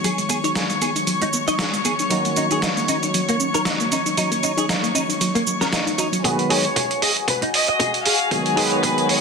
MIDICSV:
0, 0, Header, 1, 7, 480
1, 0, Start_track
1, 0, Key_signature, 5, "minor"
1, 0, Tempo, 517241
1, 36, Time_signature, 4, 2, 24, 8
1, 8544, End_track
2, 0, Start_track
2, 0, Title_t, "String section"
2, 0, Program_c, 0, 48
2, 0, Note_on_c, 0, 73, 71
2, 0, Note_on_c, 0, 85, 74
2, 5795, Note_on_c, 0, 80, 81
2, 5800, Note_on_c, 0, 66, 79
2, 5808, Note_off_c, 0, 85, 0
2, 5809, Note_off_c, 0, 73, 0
2, 8544, Note_off_c, 0, 66, 0
2, 8544, Note_off_c, 0, 80, 0
2, 8544, End_track
3, 0, Start_track
3, 0, Title_t, "Violin section"
3, 0, Program_c, 1, 48
3, 5797, Note_on_c, 1, 71, 85
3, 6020, Note_off_c, 1, 71, 0
3, 6038, Note_on_c, 1, 73, 89
3, 6517, Note_off_c, 1, 73, 0
3, 6517, Note_on_c, 1, 75, 79
3, 6625, Note_off_c, 1, 75, 0
3, 6760, Note_on_c, 1, 71, 90
3, 6867, Note_off_c, 1, 71, 0
3, 7002, Note_on_c, 1, 75, 92
3, 7445, Note_off_c, 1, 75, 0
3, 7481, Note_on_c, 1, 77, 89
3, 7702, Note_off_c, 1, 77, 0
3, 7719, Note_on_c, 1, 68, 92
3, 7952, Note_on_c, 1, 71, 95
3, 7958, Note_off_c, 1, 68, 0
3, 8434, Note_off_c, 1, 71, 0
3, 8434, Note_on_c, 1, 73, 85
3, 8544, Note_off_c, 1, 73, 0
3, 8544, End_track
4, 0, Start_track
4, 0, Title_t, "Clean electric guitar"
4, 0, Program_c, 2, 27
4, 42, Note_on_c, 2, 68, 77
4, 139, Note_off_c, 2, 68, 0
4, 277, Note_on_c, 2, 68, 88
4, 343, Note_off_c, 2, 68, 0
4, 410, Note_on_c, 2, 73, 67
4, 463, Note_off_c, 2, 73, 0
4, 519, Note_on_c, 2, 68, 69
4, 584, Note_off_c, 2, 68, 0
4, 759, Note_on_c, 2, 68, 69
4, 824, Note_off_c, 2, 68, 0
4, 1132, Note_on_c, 2, 63, 68
4, 1184, Note_off_c, 2, 63, 0
4, 1371, Note_on_c, 2, 75, 92
4, 1423, Note_off_c, 2, 75, 0
4, 1477, Note_on_c, 2, 68, 72
4, 1576, Note_off_c, 2, 68, 0
4, 1721, Note_on_c, 2, 68, 69
4, 1785, Note_off_c, 2, 68, 0
4, 1960, Note_on_c, 2, 63, 75
4, 2058, Note_off_c, 2, 63, 0
4, 2201, Note_on_c, 2, 63, 89
4, 2265, Note_off_c, 2, 63, 0
4, 2336, Note_on_c, 2, 68, 69
4, 2386, Note_off_c, 2, 68, 0
4, 2442, Note_on_c, 2, 63, 76
4, 2506, Note_off_c, 2, 63, 0
4, 2682, Note_on_c, 2, 63, 70
4, 2745, Note_off_c, 2, 63, 0
4, 3054, Note_on_c, 2, 58, 70
4, 3105, Note_off_c, 2, 58, 0
4, 3289, Note_on_c, 2, 70, 91
4, 3343, Note_off_c, 2, 70, 0
4, 3398, Note_on_c, 2, 63, 76
4, 3497, Note_off_c, 2, 63, 0
4, 3642, Note_on_c, 2, 63, 71
4, 3705, Note_off_c, 2, 63, 0
4, 3875, Note_on_c, 2, 63, 79
4, 3975, Note_off_c, 2, 63, 0
4, 4117, Note_on_c, 2, 63, 91
4, 4183, Note_off_c, 2, 63, 0
4, 4250, Note_on_c, 2, 68, 66
4, 4303, Note_off_c, 2, 68, 0
4, 4356, Note_on_c, 2, 63, 77
4, 4423, Note_off_c, 2, 63, 0
4, 4593, Note_on_c, 2, 63, 73
4, 4661, Note_off_c, 2, 63, 0
4, 4967, Note_on_c, 2, 58, 74
4, 5021, Note_off_c, 2, 58, 0
4, 5207, Note_on_c, 2, 70, 91
4, 5261, Note_off_c, 2, 70, 0
4, 5316, Note_on_c, 2, 63, 79
4, 5416, Note_off_c, 2, 63, 0
4, 5558, Note_on_c, 2, 63, 71
4, 5623, Note_off_c, 2, 63, 0
4, 5797, Note_on_c, 2, 68, 77
4, 5896, Note_off_c, 2, 68, 0
4, 6037, Note_on_c, 2, 68, 93
4, 6103, Note_off_c, 2, 68, 0
4, 6170, Note_on_c, 2, 73, 72
4, 6223, Note_off_c, 2, 73, 0
4, 6277, Note_on_c, 2, 68, 77
4, 6343, Note_off_c, 2, 68, 0
4, 6517, Note_on_c, 2, 68, 73
4, 6583, Note_off_c, 2, 68, 0
4, 6890, Note_on_c, 2, 63, 70
4, 6943, Note_off_c, 2, 63, 0
4, 7130, Note_on_c, 2, 75, 95
4, 7183, Note_off_c, 2, 75, 0
4, 7240, Note_on_c, 2, 68, 80
4, 7338, Note_off_c, 2, 68, 0
4, 7481, Note_on_c, 2, 68, 71
4, 7545, Note_off_c, 2, 68, 0
4, 7721, Note_on_c, 2, 68, 78
4, 7818, Note_off_c, 2, 68, 0
4, 7959, Note_on_c, 2, 68, 90
4, 8024, Note_off_c, 2, 68, 0
4, 8093, Note_on_c, 2, 73, 68
4, 8144, Note_off_c, 2, 73, 0
4, 8200, Note_on_c, 2, 68, 75
4, 8264, Note_off_c, 2, 68, 0
4, 8436, Note_on_c, 2, 68, 74
4, 8503, Note_off_c, 2, 68, 0
4, 8544, End_track
5, 0, Start_track
5, 0, Title_t, "Synth arpeggio sound"
5, 0, Program_c, 3, 84
5, 36, Note_on_c, 3, 54, 97
5, 127, Note_off_c, 3, 54, 0
5, 166, Note_on_c, 3, 56, 69
5, 269, Note_off_c, 3, 56, 0
5, 275, Note_on_c, 3, 59, 72
5, 366, Note_off_c, 3, 59, 0
5, 406, Note_on_c, 3, 63, 88
5, 509, Note_off_c, 3, 63, 0
5, 514, Note_on_c, 3, 54, 80
5, 641, Note_off_c, 3, 54, 0
5, 650, Note_on_c, 3, 56, 75
5, 723, Note_off_c, 3, 56, 0
5, 754, Note_on_c, 3, 59, 68
5, 846, Note_off_c, 3, 59, 0
5, 889, Note_on_c, 3, 63, 69
5, 933, Note_off_c, 3, 63, 0
5, 993, Note_on_c, 3, 54, 93
5, 1085, Note_off_c, 3, 54, 0
5, 1124, Note_on_c, 3, 56, 67
5, 1228, Note_off_c, 3, 56, 0
5, 1237, Note_on_c, 3, 59, 70
5, 1328, Note_off_c, 3, 59, 0
5, 1369, Note_on_c, 3, 63, 91
5, 1471, Note_off_c, 3, 63, 0
5, 1473, Note_on_c, 3, 54, 76
5, 1601, Note_off_c, 3, 54, 0
5, 1606, Note_on_c, 3, 56, 71
5, 1681, Note_off_c, 3, 56, 0
5, 1714, Note_on_c, 3, 59, 74
5, 1806, Note_off_c, 3, 59, 0
5, 1852, Note_on_c, 3, 63, 70
5, 1894, Note_off_c, 3, 63, 0
5, 1958, Note_on_c, 3, 54, 92
5, 2048, Note_off_c, 3, 54, 0
5, 2089, Note_on_c, 3, 58, 67
5, 2190, Note_off_c, 3, 58, 0
5, 2195, Note_on_c, 3, 61, 72
5, 2287, Note_off_c, 3, 61, 0
5, 2328, Note_on_c, 3, 63, 87
5, 2430, Note_off_c, 3, 63, 0
5, 2435, Note_on_c, 3, 54, 79
5, 2562, Note_off_c, 3, 54, 0
5, 2573, Note_on_c, 3, 58, 78
5, 2644, Note_off_c, 3, 58, 0
5, 2677, Note_on_c, 3, 61, 70
5, 2767, Note_off_c, 3, 61, 0
5, 2814, Note_on_c, 3, 63, 74
5, 2856, Note_off_c, 3, 63, 0
5, 2918, Note_on_c, 3, 54, 100
5, 3008, Note_off_c, 3, 54, 0
5, 3051, Note_on_c, 3, 58, 75
5, 3151, Note_off_c, 3, 58, 0
5, 3153, Note_on_c, 3, 61, 68
5, 3245, Note_off_c, 3, 61, 0
5, 3290, Note_on_c, 3, 63, 101
5, 3391, Note_off_c, 3, 63, 0
5, 3395, Note_on_c, 3, 54, 81
5, 3522, Note_off_c, 3, 54, 0
5, 3532, Note_on_c, 3, 58, 71
5, 3604, Note_off_c, 3, 58, 0
5, 3635, Note_on_c, 3, 61, 77
5, 3726, Note_off_c, 3, 61, 0
5, 3768, Note_on_c, 3, 63, 74
5, 3813, Note_off_c, 3, 63, 0
5, 3875, Note_on_c, 3, 54, 97
5, 3967, Note_off_c, 3, 54, 0
5, 4003, Note_on_c, 3, 58, 71
5, 4107, Note_off_c, 3, 58, 0
5, 4111, Note_on_c, 3, 61, 71
5, 4205, Note_off_c, 3, 61, 0
5, 4242, Note_on_c, 3, 63, 93
5, 4347, Note_off_c, 3, 63, 0
5, 4350, Note_on_c, 3, 54, 81
5, 4479, Note_off_c, 3, 54, 0
5, 4480, Note_on_c, 3, 58, 77
5, 4558, Note_off_c, 3, 58, 0
5, 4588, Note_on_c, 3, 61, 73
5, 4683, Note_off_c, 3, 61, 0
5, 4723, Note_on_c, 3, 63, 75
5, 4770, Note_off_c, 3, 63, 0
5, 4833, Note_on_c, 3, 54, 102
5, 4926, Note_off_c, 3, 54, 0
5, 4964, Note_on_c, 3, 58, 75
5, 5068, Note_off_c, 3, 58, 0
5, 5071, Note_on_c, 3, 54, 66
5, 5200, Note_off_c, 3, 54, 0
5, 5205, Note_on_c, 3, 61, 73
5, 5307, Note_on_c, 3, 63, 78
5, 5309, Note_off_c, 3, 61, 0
5, 5429, Note_off_c, 3, 63, 0
5, 5440, Note_on_c, 3, 63, 100
5, 5546, Note_off_c, 3, 63, 0
5, 5550, Note_on_c, 3, 66, 74
5, 5644, Note_off_c, 3, 66, 0
5, 5681, Note_on_c, 3, 54, 73
5, 5729, Note_off_c, 3, 54, 0
5, 8544, End_track
6, 0, Start_track
6, 0, Title_t, "Tine electric piano"
6, 0, Program_c, 4, 4
6, 0, Note_on_c, 4, 51, 68
6, 0, Note_on_c, 4, 54, 63
6, 0, Note_on_c, 4, 56, 64
6, 0, Note_on_c, 4, 59, 62
6, 0, Note_on_c, 4, 66, 74
6, 1925, Note_off_c, 4, 51, 0
6, 1928, Note_off_c, 4, 54, 0
6, 1930, Note_off_c, 4, 56, 0
6, 1932, Note_off_c, 4, 59, 0
6, 1936, Note_off_c, 4, 66, 0
6, 1944, Note_on_c, 4, 51, 71
6, 1950, Note_on_c, 4, 54, 65
6, 1951, Note_on_c, 4, 58, 62
6, 1958, Note_on_c, 4, 61, 64
6, 1963, Note_on_c, 4, 66, 78
6, 5764, Note_off_c, 4, 51, 0
6, 5767, Note_off_c, 4, 54, 0
6, 5768, Note_off_c, 4, 58, 0
6, 5771, Note_off_c, 4, 61, 0
6, 5774, Note_off_c, 4, 66, 0
6, 5784, Note_on_c, 4, 51, 77
6, 5787, Note_on_c, 4, 54, 71
6, 5791, Note_on_c, 4, 56, 67
6, 5791, Note_on_c, 4, 59, 73
6, 5794, Note_on_c, 4, 66, 84
6, 6004, Note_off_c, 4, 51, 0
6, 6006, Note_off_c, 4, 54, 0
6, 6008, Note_off_c, 4, 56, 0
6, 6008, Note_off_c, 4, 59, 0
6, 6009, Note_off_c, 4, 66, 0
6, 6025, Note_on_c, 4, 51, 77
6, 6028, Note_on_c, 4, 54, 66
6, 6031, Note_on_c, 4, 56, 65
6, 6032, Note_on_c, 4, 59, 70
6, 6034, Note_on_c, 4, 66, 80
6, 6148, Note_off_c, 4, 51, 0
6, 6150, Note_off_c, 4, 54, 0
6, 6151, Note_off_c, 4, 56, 0
6, 6152, Note_off_c, 4, 59, 0
6, 6153, Note_off_c, 4, 66, 0
6, 7708, Note_on_c, 4, 51, 73
6, 7708, Note_on_c, 4, 54, 68
6, 7711, Note_on_c, 4, 56, 69
6, 7712, Note_on_c, 4, 59, 66
6, 7714, Note_on_c, 4, 66, 82
6, 7926, Note_off_c, 4, 51, 0
6, 7926, Note_off_c, 4, 54, 0
6, 7928, Note_off_c, 4, 56, 0
6, 7929, Note_off_c, 4, 59, 0
6, 7929, Note_off_c, 4, 66, 0
6, 7941, Note_on_c, 4, 51, 97
6, 7943, Note_on_c, 4, 54, 86
6, 7949, Note_on_c, 4, 56, 85
6, 7954, Note_on_c, 4, 59, 85
6, 7958, Note_on_c, 4, 68, 103
6, 8544, Note_off_c, 4, 51, 0
6, 8544, Note_off_c, 4, 54, 0
6, 8544, Note_off_c, 4, 56, 0
6, 8544, Note_off_c, 4, 59, 0
6, 8544, Note_off_c, 4, 68, 0
6, 8544, End_track
7, 0, Start_track
7, 0, Title_t, "Drums"
7, 40, Note_on_c, 9, 42, 82
7, 40, Note_on_c, 9, 82, 38
7, 133, Note_off_c, 9, 42, 0
7, 133, Note_off_c, 9, 82, 0
7, 170, Note_on_c, 9, 42, 34
7, 170, Note_on_c, 9, 82, 19
7, 263, Note_off_c, 9, 42, 0
7, 263, Note_off_c, 9, 82, 0
7, 275, Note_on_c, 9, 42, 60
7, 275, Note_on_c, 9, 82, 62
7, 368, Note_off_c, 9, 42, 0
7, 368, Note_off_c, 9, 82, 0
7, 410, Note_on_c, 9, 42, 35
7, 410, Note_on_c, 9, 82, 28
7, 503, Note_off_c, 9, 42, 0
7, 503, Note_off_c, 9, 82, 0
7, 515, Note_on_c, 9, 38, 110
7, 517, Note_on_c, 9, 42, 81
7, 517, Note_on_c, 9, 82, 40
7, 607, Note_off_c, 9, 38, 0
7, 610, Note_off_c, 9, 42, 0
7, 610, Note_off_c, 9, 82, 0
7, 647, Note_on_c, 9, 42, 34
7, 647, Note_on_c, 9, 82, 19
7, 740, Note_off_c, 9, 42, 0
7, 740, Note_off_c, 9, 82, 0
7, 758, Note_on_c, 9, 42, 54
7, 758, Note_on_c, 9, 82, 62
7, 850, Note_off_c, 9, 42, 0
7, 851, Note_off_c, 9, 82, 0
7, 891, Note_on_c, 9, 42, 36
7, 891, Note_on_c, 9, 82, 27
7, 983, Note_off_c, 9, 42, 0
7, 983, Note_off_c, 9, 82, 0
7, 995, Note_on_c, 9, 42, 84
7, 995, Note_on_c, 9, 82, 36
7, 1088, Note_off_c, 9, 42, 0
7, 1088, Note_off_c, 9, 82, 0
7, 1128, Note_on_c, 9, 42, 36
7, 1128, Note_on_c, 9, 82, 19
7, 1221, Note_off_c, 9, 42, 0
7, 1221, Note_off_c, 9, 82, 0
7, 1235, Note_on_c, 9, 82, 65
7, 1328, Note_off_c, 9, 82, 0
7, 1370, Note_on_c, 9, 42, 34
7, 1371, Note_on_c, 9, 82, 30
7, 1463, Note_off_c, 9, 42, 0
7, 1463, Note_off_c, 9, 82, 0
7, 1473, Note_on_c, 9, 38, 103
7, 1475, Note_on_c, 9, 42, 77
7, 1475, Note_on_c, 9, 82, 35
7, 1566, Note_off_c, 9, 38, 0
7, 1568, Note_off_c, 9, 42, 0
7, 1568, Note_off_c, 9, 82, 0
7, 1611, Note_on_c, 9, 42, 34
7, 1611, Note_on_c, 9, 82, 18
7, 1704, Note_off_c, 9, 42, 0
7, 1704, Note_off_c, 9, 82, 0
7, 1716, Note_on_c, 9, 42, 61
7, 1716, Note_on_c, 9, 82, 69
7, 1809, Note_off_c, 9, 42, 0
7, 1809, Note_off_c, 9, 82, 0
7, 1848, Note_on_c, 9, 42, 35
7, 1848, Note_on_c, 9, 82, 29
7, 1941, Note_off_c, 9, 42, 0
7, 1941, Note_off_c, 9, 82, 0
7, 1954, Note_on_c, 9, 42, 86
7, 1954, Note_on_c, 9, 82, 38
7, 2046, Note_off_c, 9, 42, 0
7, 2046, Note_off_c, 9, 82, 0
7, 2088, Note_on_c, 9, 42, 32
7, 2088, Note_on_c, 9, 82, 18
7, 2181, Note_off_c, 9, 42, 0
7, 2181, Note_off_c, 9, 82, 0
7, 2195, Note_on_c, 9, 42, 56
7, 2195, Note_on_c, 9, 82, 62
7, 2287, Note_off_c, 9, 42, 0
7, 2288, Note_off_c, 9, 82, 0
7, 2328, Note_on_c, 9, 42, 36
7, 2328, Note_on_c, 9, 82, 29
7, 2421, Note_off_c, 9, 42, 0
7, 2421, Note_off_c, 9, 82, 0
7, 2433, Note_on_c, 9, 38, 114
7, 2435, Note_on_c, 9, 42, 78
7, 2435, Note_on_c, 9, 82, 38
7, 2526, Note_off_c, 9, 38, 0
7, 2528, Note_off_c, 9, 42, 0
7, 2528, Note_off_c, 9, 82, 0
7, 2571, Note_on_c, 9, 42, 33
7, 2571, Note_on_c, 9, 82, 18
7, 2663, Note_off_c, 9, 42, 0
7, 2664, Note_off_c, 9, 82, 0
7, 2676, Note_on_c, 9, 42, 57
7, 2676, Note_on_c, 9, 82, 65
7, 2769, Note_off_c, 9, 42, 0
7, 2769, Note_off_c, 9, 82, 0
7, 2810, Note_on_c, 9, 42, 33
7, 2811, Note_on_c, 9, 82, 27
7, 2903, Note_off_c, 9, 42, 0
7, 2903, Note_off_c, 9, 82, 0
7, 2916, Note_on_c, 9, 42, 77
7, 2916, Note_on_c, 9, 82, 38
7, 3009, Note_off_c, 9, 42, 0
7, 3009, Note_off_c, 9, 82, 0
7, 3049, Note_on_c, 9, 42, 34
7, 3049, Note_on_c, 9, 82, 20
7, 3142, Note_off_c, 9, 42, 0
7, 3142, Note_off_c, 9, 82, 0
7, 3155, Note_on_c, 9, 82, 64
7, 3248, Note_off_c, 9, 82, 0
7, 3289, Note_on_c, 9, 42, 33
7, 3289, Note_on_c, 9, 82, 30
7, 3381, Note_off_c, 9, 42, 0
7, 3381, Note_off_c, 9, 82, 0
7, 3391, Note_on_c, 9, 38, 100
7, 3393, Note_on_c, 9, 42, 72
7, 3393, Note_on_c, 9, 82, 38
7, 3483, Note_off_c, 9, 38, 0
7, 3486, Note_off_c, 9, 42, 0
7, 3486, Note_off_c, 9, 82, 0
7, 3527, Note_on_c, 9, 42, 34
7, 3527, Note_on_c, 9, 82, 18
7, 3620, Note_off_c, 9, 42, 0
7, 3620, Note_off_c, 9, 82, 0
7, 3636, Note_on_c, 9, 42, 58
7, 3637, Note_on_c, 9, 82, 68
7, 3729, Note_off_c, 9, 42, 0
7, 3729, Note_off_c, 9, 82, 0
7, 3769, Note_on_c, 9, 42, 34
7, 3769, Note_on_c, 9, 82, 29
7, 3862, Note_off_c, 9, 42, 0
7, 3862, Note_off_c, 9, 82, 0
7, 3874, Note_on_c, 9, 42, 79
7, 3875, Note_on_c, 9, 82, 42
7, 3967, Note_off_c, 9, 42, 0
7, 3967, Note_off_c, 9, 82, 0
7, 4006, Note_on_c, 9, 42, 32
7, 4006, Note_on_c, 9, 82, 18
7, 4099, Note_off_c, 9, 42, 0
7, 4099, Note_off_c, 9, 82, 0
7, 4114, Note_on_c, 9, 42, 55
7, 4114, Note_on_c, 9, 82, 68
7, 4206, Note_off_c, 9, 42, 0
7, 4207, Note_off_c, 9, 82, 0
7, 4247, Note_on_c, 9, 42, 33
7, 4247, Note_on_c, 9, 82, 30
7, 4340, Note_off_c, 9, 42, 0
7, 4340, Note_off_c, 9, 82, 0
7, 4355, Note_on_c, 9, 38, 109
7, 4357, Note_on_c, 9, 42, 82
7, 4357, Note_on_c, 9, 82, 40
7, 4447, Note_off_c, 9, 38, 0
7, 4450, Note_off_c, 9, 42, 0
7, 4450, Note_off_c, 9, 82, 0
7, 4490, Note_on_c, 9, 42, 33
7, 4491, Note_on_c, 9, 82, 19
7, 4583, Note_off_c, 9, 42, 0
7, 4583, Note_off_c, 9, 82, 0
7, 4596, Note_on_c, 9, 42, 54
7, 4596, Note_on_c, 9, 82, 69
7, 4689, Note_off_c, 9, 42, 0
7, 4689, Note_off_c, 9, 82, 0
7, 4730, Note_on_c, 9, 42, 33
7, 4730, Note_on_c, 9, 82, 30
7, 4822, Note_off_c, 9, 42, 0
7, 4822, Note_off_c, 9, 82, 0
7, 4835, Note_on_c, 9, 42, 79
7, 4835, Note_on_c, 9, 82, 40
7, 4928, Note_off_c, 9, 42, 0
7, 4928, Note_off_c, 9, 82, 0
7, 4969, Note_on_c, 9, 42, 34
7, 4969, Note_on_c, 9, 82, 19
7, 5062, Note_off_c, 9, 42, 0
7, 5062, Note_off_c, 9, 82, 0
7, 5076, Note_on_c, 9, 82, 68
7, 5169, Note_off_c, 9, 82, 0
7, 5207, Note_on_c, 9, 38, 33
7, 5210, Note_on_c, 9, 42, 34
7, 5210, Note_on_c, 9, 82, 29
7, 5300, Note_off_c, 9, 38, 0
7, 5302, Note_off_c, 9, 42, 0
7, 5303, Note_off_c, 9, 82, 0
7, 5313, Note_on_c, 9, 38, 104
7, 5315, Note_on_c, 9, 42, 77
7, 5315, Note_on_c, 9, 82, 38
7, 5406, Note_off_c, 9, 38, 0
7, 5408, Note_off_c, 9, 42, 0
7, 5408, Note_off_c, 9, 82, 0
7, 5449, Note_on_c, 9, 42, 34
7, 5450, Note_on_c, 9, 82, 19
7, 5542, Note_off_c, 9, 42, 0
7, 5542, Note_off_c, 9, 82, 0
7, 5554, Note_on_c, 9, 42, 58
7, 5554, Note_on_c, 9, 82, 71
7, 5647, Note_off_c, 9, 42, 0
7, 5647, Note_off_c, 9, 82, 0
7, 5689, Note_on_c, 9, 42, 35
7, 5689, Note_on_c, 9, 82, 30
7, 5782, Note_off_c, 9, 42, 0
7, 5782, Note_off_c, 9, 82, 0
7, 5794, Note_on_c, 9, 36, 116
7, 5797, Note_on_c, 9, 42, 88
7, 5797, Note_on_c, 9, 47, 48
7, 5887, Note_off_c, 9, 36, 0
7, 5890, Note_off_c, 9, 42, 0
7, 5890, Note_off_c, 9, 47, 0
7, 5930, Note_on_c, 9, 42, 36
7, 6023, Note_off_c, 9, 42, 0
7, 6036, Note_on_c, 9, 46, 95
7, 6128, Note_off_c, 9, 46, 0
7, 6170, Note_on_c, 9, 42, 39
7, 6263, Note_off_c, 9, 42, 0
7, 6274, Note_on_c, 9, 36, 104
7, 6276, Note_on_c, 9, 42, 91
7, 6276, Note_on_c, 9, 47, 50
7, 6367, Note_off_c, 9, 36, 0
7, 6369, Note_off_c, 9, 42, 0
7, 6369, Note_off_c, 9, 47, 0
7, 6411, Note_on_c, 9, 42, 39
7, 6504, Note_off_c, 9, 42, 0
7, 6517, Note_on_c, 9, 46, 84
7, 6609, Note_off_c, 9, 46, 0
7, 6650, Note_on_c, 9, 42, 38
7, 6743, Note_off_c, 9, 42, 0
7, 6754, Note_on_c, 9, 36, 112
7, 6756, Note_on_c, 9, 42, 91
7, 6756, Note_on_c, 9, 47, 49
7, 6846, Note_off_c, 9, 36, 0
7, 6849, Note_off_c, 9, 42, 0
7, 6849, Note_off_c, 9, 47, 0
7, 6888, Note_on_c, 9, 42, 39
7, 6980, Note_off_c, 9, 42, 0
7, 6997, Note_on_c, 9, 46, 99
7, 7090, Note_off_c, 9, 46, 0
7, 7129, Note_on_c, 9, 42, 39
7, 7222, Note_off_c, 9, 42, 0
7, 7234, Note_on_c, 9, 36, 111
7, 7237, Note_on_c, 9, 42, 87
7, 7237, Note_on_c, 9, 47, 53
7, 7327, Note_off_c, 9, 36, 0
7, 7330, Note_off_c, 9, 42, 0
7, 7330, Note_off_c, 9, 47, 0
7, 7370, Note_on_c, 9, 42, 39
7, 7462, Note_off_c, 9, 42, 0
7, 7475, Note_on_c, 9, 46, 92
7, 7568, Note_off_c, 9, 46, 0
7, 7607, Note_on_c, 9, 42, 40
7, 7699, Note_off_c, 9, 42, 0
7, 7714, Note_on_c, 9, 42, 88
7, 7714, Note_on_c, 9, 47, 59
7, 7715, Note_on_c, 9, 36, 116
7, 7807, Note_off_c, 9, 42, 0
7, 7807, Note_off_c, 9, 47, 0
7, 7808, Note_off_c, 9, 36, 0
7, 7849, Note_on_c, 9, 42, 38
7, 7941, Note_off_c, 9, 42, 0
7, 7955, Note_on_c, 9, 46, 104
7, 8048, Note_off_c, 9, 46, 0
7, 8090, Note_on_c, 9, 42, 38
7, 8183, Note_off_c, 9, 42, 0
7, 8194, Note_on_c, 9, 36, 117
7, 8198, Note_on_c, 9, 42, 88
7, 8198, Note_on_c, 9, 47, 60
7, 8287, Note_off_c, 9, 36, 0
7, 8291, Note_off_c, 9, 42, 0
7, 8291, Note_off_c, 9, 47, 0
7, 8333, Note_on_c, 9, 42, 37
7, 8426, Note_off_c, 9, 42, 0
7, 8437, Note_on_c, 9, 46, 86
7, 8530, Note_off_c, 9, 46, 0
7, 8544, End_track
0, 0, End_of_file